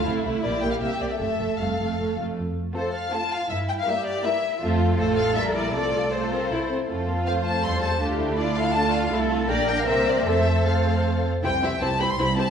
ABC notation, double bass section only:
X:1
M:3/4
L:1/8
Q:1/4=160
K:F
V:1 name="Double bass section" clef=bass
C,, C,, B,,, B,,, C,, C,, | F,,, F,,, F,,, F,,, F,,, F,,, | F,,2 z4 | G,,2 z4 |
F,,2 A,,,2 B,,,2 | C,,4 C,, z | F,,4 E,,2 | D,,6 |
C,,2 B,,,2 C,,2 | F,,4- F,, z | [K:C] C,,2 C,,2 C,,2 |]